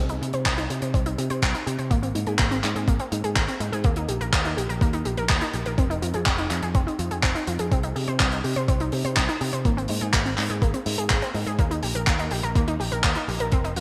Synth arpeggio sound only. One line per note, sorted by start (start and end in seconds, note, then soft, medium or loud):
0.10 0.14 D#4 loud
0.22 0.26 G4 medium
0.34 0.45 C5 loud
0.46 0.54 C4 loud
0.58 0.63 D#4 loud
0.70 0.75 G4 medium
0.82 0.94 C5 loud
0.94 1.02 C4 loud
1.06 1.11 D#4 loud
1.18 1.23 G4 medium
1.30 1.42 C5 loud
1.42 1.50 C4 loud
1.54 1.59 D#4 loud
1.66 1.71 G4 medium
1.78 1.90 C5 loud
1.91 1.99 A#3 loud
2.03 2.08 C4 loud
2.15 2.20 D#4 medium
2.27 2.39 G#4 loud
2.39 2.47 A#3 loud
2.51 2.56 C4 loud
2.63 2.68 D#4 medium
2.76 2.87 G#4 loud
2.88 2.96 A#3 loud
3.00 3.05 C4 loud
3.12 3.17 D#4 medium
3.24 3.35 G#4 loud
3.36 3.44 A#3 loud
3.48 3.53 C4 loud
3.60 3.65 D#4 medium
3.73 3.84 G#4 loud
3.84 3.92 A#3 loud
3.97 4.01 D#4 loud
4.09 4.13 G4 medium
4.21 4.32 A#4 loud
4.33 4.41 A#3 loud
4.45 4.50 D#4 loud
4.57 4.62 G4 medium
4.69 4.81 A#4 loud
4.81 4.89 A#3 loud
4.93 4.98 D#4 loud
5.05 5.10 G4 medium
5.18 5.29 A#4 loud
5.30 5.38 A#3 loud
5.42 5.47 D#4 loud
5.54 5.59 G4 medium
5.66 5.78 A#4 loud
5.78 5.86 C4 loud
5.90 5.95 D#4 loud
6.02 6.07 F4 medium
6.14 6.26 G#4 loud
6.26 6.34 C4 loud
6.38 6.43 D#4 loud
6.51 6.55 F4 medium
6.63 6.74 G#4 loud
6.75 6.83 C4 loud
6.87 6.92 D#4 loud
6.99 7.04 F4 medium
7.11 7.23 G#4 loud
7.23 7.31 C4 loud
7.35 7.40 D#4 loud
7.47 7.52 F4 medium
7.59 7.71 G#4 loud
7.71 7.79 C4 loud
7.84 7.88 D#4 loud
7.96 8.00 G4 medium
8.08 8.19 C5 loud
8.20 8.28 C4 loud
8.32 8.37 D#4 loud
8.44 8.49 G4 medium
8.56 8.68 C5 loud
8.68 8.76 C4 loud
8.80 8.85 D#4 loud
8.93 8.97 G4 medium
9.05 9.16 C5 loud
9.17 9.25 C4 loud
9.29 9.34 D#4 loud
9.41 9.46 G4 medium
9.53 9.64 C5 loud
9.65 9.73 A#3 loud
9.77 9.82 C4 loud
9.89 9.94 D#4 medium
10.01 10.13 G#4 loud
10.13 10.21 A#3 loud
10.26 10.30 C4 loud
10.38 10.42 D#4 medium
10.50 10.61 G#4 loud
10.62 10.70 A#3 loud
10.74 10.79 C4 loud
10.86 10.91 D#4 medium
10.98 11.10 G#4 loud
11.10 11.18 A#3 loud
11.22 11.27 C4 loud
11.34 11.39 D#4 medium
11.47 11.58 G#4 loud
11.59 11.67 A#3 loud
11.71 11.76 D#4 loud
11.83 11.88 G4 medium
11.95 12.07 A#4 loud
12.07 12.15 A#3 loud
12.19 12.24 D#4 loud
12.31 12.36 G4 medium
12.43 12.55 A#4 loud
12.56 12.63 A#3 loud
12.68 12.72 D#4 loud
12.80 12.84 G4 medium
12.92 13.03 A#4 loud
13.04 13.12 A#3 loud
13.16 13.21 D#4 loud
13.28 13.33 G4 medium
13.40 13.52 A#4 loud
13.52 13.60 C4 loud
13.64 13.69 D#4 loud
13.76 13.80 F4 medium